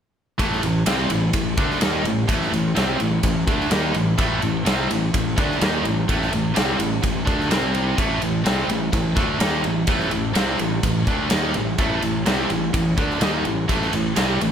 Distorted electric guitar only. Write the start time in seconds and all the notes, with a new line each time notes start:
0.38 A2 E3 A3
0.63 A2 E3
0.86 C3 G3 C4
1.11 A2 E3
1.33 A2 E3
1.57 D3 A3 D4
1.81 D#3 A#3 D#4
2.04 A2 E3
2.28 A2 E3 A3
2.52 A2 E3
2.75 C3 G3 C4
2.99 A2 E3
3.24 A2 E3
3.47 D3 A3 D4
3.71 D#3 A#3 D#4
3.94 A2 E3
4.18 A2 E3 A3
4.41 A2 E3
4.65 C3 G3 C4
4.90 A2 E3
5.14 A2 E3
5.36 D3 A3 D4
5.61 D#3 A#3 D#4
5.84 A2 E3
6.08 A2 E3 A3
6.32 A2 E3
6.54 C3 G3 C4
6.79 A2 E3
7.03 A2 E3
7.25 D3 A3 D4
7.50 C3 G3 C4
7.97 A2 E3 A3
8.22 A2 E3
8.44 C3 G3 C4
8.68 A2 E3
8.92 A2 E3
9.15 D3 A3 D4
9.38 D#3 A#3 D#4
9.63 A2 E3
9.87 A2 E3 A3
10.11 A2 E3
10.33 C3 G3 C4
10.59 A2 E3
10.83 A2 E3
11.08 D3 A3 D4
11.30 D#3 A#3 D#4
11.55 A2 E3
11.79 A2 E3 A3
12.03 A2 E3
12.26 C3 G3 C4
12.51 A2 E3
12.74 A2 E3
12.98 D3 A3 D4
13.21 D#3 A#3 D#4
13.46 A2 E3
13.68 A2 E3 A3
13.93 A2 E3
14.16 C3 G3 C4
14.41 A2 E3